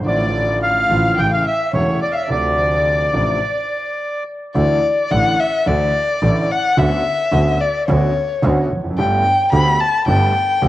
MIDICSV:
0, 0, Header, 1, 5, 480
1, 0, Start_track
1, 0, Key_signature, -1, "minor"
1, 0, Tempo, 559180
1, 67, Time_signature, 4, 2, 24, 8
1, 3904, Key_signature, 2, "major"
1, 4868, Tempo, 550964
1, 9235, End_track
2, 0, Start_track
2, 0, Title_t, "Bandoneon"
2, 0, Program_c, 0, 23
2, 63, Note_on_c, 0, 74, 80
2, 506, Note_off_c, 0, 74, 0
2, 541, Note_on_c, 0, 77, 78
2, 1021, Note_on_c, 0, 79, 86
2, 1028, Note_off_c, 0, 77, 0
2, 1128, Note_off_c, 0, 79, 0
2, 1143, Note_on_c, 0, 77, 83
2, 1249, Note_off_c, 0, 77, 0
2, 1259, Note_on_c, 0, 76, 74
2, 1477, Note_off_c, 0, 76, 0
2, 1495, Note_on_c, 0, 73, 75
2, 1714, Note_off_c, 0, 73, 0
2, 1736, Note_on_c, 0, 74, 69
2, 1817, Note_on_c, 0, 77, 50
2, 1824, Note_off_c, 0, 74, 0
2, 1847, Note_off_c, 0, 77, 0
2, 1868, Note_on_c, 0, 76, 70
2, 1970, Note_off_c, 0, 76, 0
2, 1982, Note_on_c, 0, 74, 78
2, 3635, Note_off_c, 0, 74, 0
2, 9235, End_track
3, 0, Start_track
3, 0, Title_t, "Violin"
3, 0, Program_c, 1, 40
3, 58, Note_on_c, 1, 74, 65
3, 504, Note_off_c, 1, 74, 0
3, 545, Note_on_c, 1, 77, 67
3, 983, Note_off_c, 1, 77, 0
3, 1006, Note_on_c, 1, 79, 69
3, 1120, Note_off_c, 1, 79, 0
3, 1133, Note_on_c, 1, 77, 65
3, 1242, Note_off_c, 1, 77, 0
3, 1247, Note_on_c, 1, 76, 65
3, 1470, Note_off_c, 1, 76, 0
3, 1492, Note_on_c, 1, 73, 57
3, 1712, Note_off_c, 1, 73, 0
3, 1732, Note_on_c, 1, 74, 61
3, 1813, Note_off_c, 1, 74, 0
3, 1826, Note_on_c, 1, 77, 46
3, 1837, Note_on_c, 1, 76, 59
3, 1843, Note_off_c, 1, 77, 0
3, 1954, Note_off_c, 1, 76, 0
3, 1964, Note_on_c, 1, 74, 67
3, 3626, Note_off_c, 1, 74, 0
3, 3911, Note_on_c, 1, 74, 76
3, 4388, Note_on_c, 1, 78, 88
3, 4401, Note_off_c, 1, 74, 0
3, 4634, Note_on_c, 1, 76, 81
3, 4647, Note_off_c, 1, 78, 0
3, 4875, Note_on_c, 1, 74, 76
3, 4888, Note_off_c, 1, 76, 0
3, 5598, Note_on_c, 1, 78, 88
3, 5612, Note_off_c, 1, 74, 0
3, 5835, Note_on_c, 1, 76, 84
3, 5848, Note_off_c, 1, 78, 0
3, 6558, Note_on_c, 1, 74, 74
3, 6571, Note_off_c, 1, 76, 0
3, 6784, Note_off_c, 1, 74, 0
3, 6790, Note_on_c, 1, 73, 70
3, 7474, Note_off_c, 1, 73, 0
3, 7757, Note_on_c, 1, 79, 93
3, 8197, Note_off_c, 1, 79, 0
3, 8225, Note_on_c, 1, 83, 92
3, 8469, Note_on_c, 1, 81, 88
3, 8482, Note_off_c, 1, 83, 0
3, 8702, Note_off_c, 1, 81, 0
3, 8707, Note_on_c, 1, 79, 85
3, 9235, Note_off_c, 1, 79, 0
3, 9235, End_track
4, 0, Start_track
4, 0, Title_t, "Grand piano"
4, 0, Program_c, 2, 0
4, 1, Note_on_c, 2, 32, 60
4, 35, Note_on_c, 2, 50, 57
4, 49, Note_on_c, 2, 53, 54
4, 52, Note_on_c, 2, 33, 68
4, 54, Note_on_c, 2, 45, 71
4, 62, Note_on_c, 2, 57, 53
4, 64, Note_off_c, 2, 32, 0
4, 73, Note_on_c, 2, 65, 59
4, 726, Note_off_c, 2, 50, 0
4, 733, Note_off_c, 2, 53, 0
4, 735, Note_off_c, 2, 33, 0
4, 736, Note_off_c, 2, 45, 0
4, 739, Note_off_c, 2, 57, 0
4, 745, Note_off_c, 2, 65, 0
4, 767, Note_on_c, 2, 50, 62
4, 771, Note_on_c, 2, 33, 70
4, 771, Note_on_c, 2, 45, 70
4, 772, Note_on_c, 2, 53, 54
4, 775, Note_on_c, 2, 57, 58
4, 777, Note_on_c, 2, 65, 70
4, 971, Note_off_c, 2, 50, 0
4, 973, Note_off_c, 2, 33, 0
4, 973, Note_off_c, 2, 45, 0
4, 974, Note_off_c, 2, 53, 0
4, 975, Note_off_c, 2, 57, 0
4, 976, Note_off_c, 2, 65, 0
4, 1004, Note_on_c, 2, 49, 59
4, 1009, Note_on_c, 2, 45, 71
4, 1009, Note_on_c, 2, 57, 54
4, 1010, Note_on_c, 2, 33, 68
4, 1010, Note_on_c, 2, 52, 54
4, 1013, Note_on_c, 2, 64, 69
4, 1209, Note_off_c, 2, 49, 0
4, 1211, Note_off_c, 2, 33, 0
4, 1211, Note_off_c, 2, 45, 0
4, 1211, Note_off_c, 2, 57, 0
4, 1212, Note_off_c, 2, 52, 0
4, 1213, Note_off_c, 2, 64, 0
4, 1485, Note_on_c, 2, 49, 59
4, 1485, Note_on_c, 2, 52, 52
4, 1487, Note_on_c, 2, 28, 72
4, 1488, Note_on_c, 2, 40, 69
4, 1490, Note_on_c, 2, 57, 53
4, 1491, Note_on_c, 2, 64, 68
4, 1687, Note_off_c, 2, 49, 0
4, 1687, Note_off_c, 2, 52, 0
4, 1689, Note_off_c, 2, 28, 0
4, 1689, Note_off_c, 2, 40, 0
4, 1690, Note_off_c, 2, 57, 0
4, 1690, Note_off_c, 2, 64, 0
4, 1955, Note_on_c, 2, 48, 52
4, 1970, Note_on_c, 2, 53, 47
4, 1971, Note_on_c, 2, 50, 63
4, 1974, Note_on_c, 2, 38, 65
4, 1980, Note_on_c, 2, 57, 50
4, 1992, Note_on_c, 2, 62, 60
4, 2646, Note_off_c, 2, 48, 0
4, 2653, Note_off_c, 2, 50, 0
4, 2653, Note_off_c, 2, 53, 0
4, 2655, Note_off_c, 2, 38, 0
4, 2658, Note_off_c, 2, 57, 0
4, 2664, Note_off_c, 2, 62, 0
4, 2690, Note_on_c, 2, 48, 52
4, 2691, Note_on_c, 2, 45, 65
4, 2692, Note_on_c, 2, 33, 64
4, 2692, Note_on_c, 2, 53, 52
4, 2696, Note_on_c, 2, 57, 50
4, 2696, Note_on_c, 2, 62, 62
4, 2893, Note_off_c, 2, 45, 0
4, 2893, Note_off_c, 2, 48, 0
4, 2893, Note_off_c, 2, 53, 0
4, 2894, Note_off_c, 2, 33, 0
4, 2896, Note_off_c, 2, 57, 0
4, 2896, Note_off_c, 2, 62, 0
4, 3902, Note_on_c, 2, 38, 69
4, 3903, Note_on_c, 2, 50, 68
4, 3903, Note_on_c, 2, 57, 52
4, 3904, Note_on_c, 2, 52, 54
4, 3908, Note_on_c, 2, 64, 63
4, 4106, Note_off_c, 2, 38, 0
4, 4106, Note_off_c, 2, 50, 0
4, 4106, Note_off_c, 2, 52, 0
4, 4106, Note_off_c, 2, 57, 0
4, 4108, Note_off_c, 2, 64, 0
4, 4384, Note_on_c, 2, 50, 62
4, 4385, Note_on_c, 2, 33, 65
4, 4385, Note_on_c, 2, 52, 56
4, 4386, Note_on_c, 2, 45, 71
4, 4388, Note_on_c, 2, 57, 54
4, 4389, Note_on_c, 2, 64, 67
4, 4587, Note_off_c, 2, 50, 0
4, 4588, Note_off_c, 2, 33, 0
4, 4588, Note_off_c, 2, 45, 0
4, 4588, Note_off_c, 2, 52, 0
4, 4589, Note_off_c, 2, 57, 0
4, 4590, Note_off_c, 2, 64, 0
4, 4858, Note_on_c, 2, 50, 72
4, 4859, Note_on_c, 2, 38, 72
4, 4862, Note_on_c, 2, 52, 58
4, 4862, Note_on_c, 2, 64, 65
4, 4863, Note_on_c, 2, 57, 57
4, 5066, Note_off_c, 2, 38, 0
4, 5067, Note_off_c, 2, 50, 0
4, 5067, Note_off_c, 2, 52, 0
4, 5067, Note_off_c, 2, 64, 0
4, 5068, Note_off_c, 2, 57, 0
4, 5344, Note_on_c, 2, 50, 62
4, 5347, Note_on_c, 2, 33, 75
4, 5348, Note_on_c, 2, 45, 76
4, 5348, Note_on_c, 2, 52, 60
4, 5351, Note_on_c, 2, 57, 58
4, 5352, Note_on_c, 2, 64, 71
4, 5549, Note_off_c, 2, 50, 0
4, 5551, Note_off_c, 2, 33, 0
4, 5551, Note_off_c, 2, 45, 0
4, 5551, Note_off_c, 2, 52, 0
4, 5552, Note_off_c, 2, 57, 0
4, 5553, Note_off_c, 2, 64, 0
4, 5825, Note_on_c, 2, 50, 70
4, 5828, Note_on_c, 2, 38, 71
4, 5828, Note_on_c, 2, 59, 57
4, 5830, Note_on_c, 2, 61, 57
4, 5833, Note_on_c, 2, 66, 68
4, 6033, Note_off_c, 2, 38, 0
4, 6033, Note_off_c, 2, 50, 0
4, 6033, Note_off_c, 2, 59, 0
4, 6034, Note_off_c, 2, 61, 0
4, 6036, Note_off_c, 2, 66, 0
4, 6299, Note_on_c, 2, 50, 74
4, 6299, Note_on_c, 2, 59, 59
4, 6303, Note_on_c, 2, 66, 67
4, 6305, Note_on_c, 2, 38, 75
4, 6306, Note_on_c, 2, 61, 54
4, 6510, Note_off_c, 2, 50, 0
4, 6510, Note_off_c, 2, 59, 0
4, 6512, Note_off_c, 2, 66, 0
4, 6513, Note_off_c, 2, 38, 0
4, 6514, Note_off_c, 2, 61, 0
4, 6791, Note_on_c, 2, 61, 62
4, 6792, Note_on_c, 2, 50, 75
4, 6793, Note_on_c, 2, 59, 63
4, 6794, Note_on_c, 2, 38, 73
4, 6795, Note_on_c, 2, 66, 77
4, 6994, Note_off_c, 2, 50, 0
4, 6994, Note_off_c, 2, 61, 0
4, 6995, Note_off_c, 2, 38, 0
4, 6995, Note_off_c, 2, 59, 0
4, 6996, Note_off_c, 2, 66, 0
4, 7265, Note_on_c, 2, 50, 79
4, 7267, Note_on_c, 2, 59, 58
4, 7268, Note_on_c, 2, 38, 74
4, 7268, Note_on_c, 2, 61, 61
4, 7270, Note_on_c, 2, 66, 74
4, 7471, Note_off_c, 2, 50, 0
4, 7471, Note_off_c, 2, 59, 0
4, 7471, Note_off_c, 2, 61, 0
4, 7472, Note_off_c, 2, 38, 0
4, 7472, Note_off_c, 2, 66, 0
4, 7565, Note_on_c, 2, 40, 46
4, 7628, Note_off_c, 2, 40, 0
4, 7631, Note_on_c, 2, 41, 59
4, 7687, Note_on_c, 2, 42, 73
4, 7691, Note_off_c, 2, 41, 0
4, 7749, Note_off_c, 2, 42, 0
4, 7752, Note_on_c, 2, 31, 82
4, 7753, Note_on_c, 2, 50, 64
4, 7755, Note_on_c, 2, 43, 71
4, 7755, Note_on_c, 2, 59, 56
4, 7756, Note_on_c, 2, 67, 74
4, 7758, Note_on_c, 2, 57, 61
4, 7951, Note_off_c, 2, 31, 0
4, 7952, Note_off_c, 2, 50, 0
4, 7953, Note_off_c, 2, 43, 0
4, 7953, Note_off_c, 2, 59, 0
4, 7954, Note_off_c, 2, 57, 0
4, 7954, Note_off_c, 2, 67, 0
4, 8226, Note_on_c, 2, 50, 81
4, 8227, Note_on_c, 2, 57, 60
4, 8228, Note_on_c, 2, 38, 77
4, 8228, Note_on_c, 2, 67, 72
4, 8229, Note_on_c, 2, 59, 61
4, 8427, Note_off_c, 2, 57, 0
4, 8428, Note_off_c, 2, 38, 0
4, 8428, Note_off_c, 2, 59, 0
4, 8428, Note_off_c, 2, 67, 0
4, 8429, Note_off_c, 2, 50, 0
4, 8704, Note_on_c, 2, 50, 64
4, 8705, Note_on_c, 2, 43, 78
4, 8705, Note_on_c, 2, 67, 72
4, 8706, Note_on_c, 2, 31, 74
4, 8707, Note_on_c, 2, 57, 59
4, 8707, Note_on_c, 2, 59, 61
4, 8907, Note_off_c, 2, 43, 0
4, 8907, Note_off_c, 2, 50, 0
4, 8907, Note_off_c, 2, 67, 0
4, 8908, Note_off_c, 2, 31, 0
4, 8908, Note_off_c, 2, 57, 0
4, 8909, Note_off_c, 2, 59, 0
4, 9175, Note_on_c, 2, 50, 73
4, 9179, Note_on_c, 2, 38, 82
4, 9179, Note_on_c, 2, 57, 57
4, 9181, Note_on_c, 2, 59, 59
4, 9183, Note_on_c, 2, 67, 71
4, 9235, Note_off_c, 2, 38, 0
4, 9235, Note_off_c, 2, 50, 0
4, 9235, Note_off_c, 2, 57, 0
4, 9235, Note_off_c, 2, 59, 0
4, 9235, Note_off_c, 2, 67, 0
4, 9235, End_track
5, 0, Start_track
5, 0, Title_t, "Double bass"
5, 0, Program_c, 3, 43
5, 63, Note_on_c, 3, 33, 84
5, 740, Note_off_c, 3, 33, 0
5, 771, Note_on_c, 3, 33, 76
5, 973, Note_off_c, 3, 33, 0
5, 1014, Note_on_c, 3, 33, 75
5, 1213, Note_off_c, 3, 33, 0
5, 1494, Note_on_c, 3, 28, 76
5, 1692, Note_off_c, 3, 28, 0
5, 1977, Note_on_c, 3, 38, 74
5, 2657, Note_off_c, 3, 38, 0
5, 2690, Note_on_c, 3, 33, 72
5, 2893, Note_off_c, 3, 33, 0
5, 3909, Note_on_c, 3, 38, 80
5, 4109, Note_off_c, 3, 38, 0
5, 4393, Note_on_c, 3, 33, 76
5, 4591, Note_off_c, 3, 33, 0
5, 4866, Note_on_c, 3, 38, 73
5, 5069, Note_off_c, 3, 38, 0
5, 5349, Note_on_c, 3, 33, 87
5, 5551, Note_off_c, 3, 33, 0
5, 5828, Note_on_c, 3, 38, 83
5, 6033, Note_off_c, 3, 38, 0
5, 6308, Note_on_c, 3, 38, 91
5, 6515, Note_off_c, 3, 38, 0
5, 6794, Note_on_c, 3, 38, 88
5, 6995, Note_off_c, 3, 38, 0
5, 7275, Note_on_c, 3, 38, 90
5, 7475, Note_off_c, 3, 38, 0
5, 7517, Note_on_c, 3, 29, 56
5, 7748, Note_off_c, 3, 29, 0
5, 7753, Note_on_c, 3, 31, 91
5, 7952, Note_off_c, 3, 31, 0
5, 8228, Note_on_c, 3, 38, 89
5, 8428, Note_off_c, 3, 38, 0
5, 8701, Note_on_c, 3, 31, 89
5, 8905, Note_off_c, 3, 31, 0
5, 9182, Note_on_c, 3, 38, 87
5, 9235, Note_off_c, 3, 38, 0
5, 9235, End_track
0, 0, End_of_file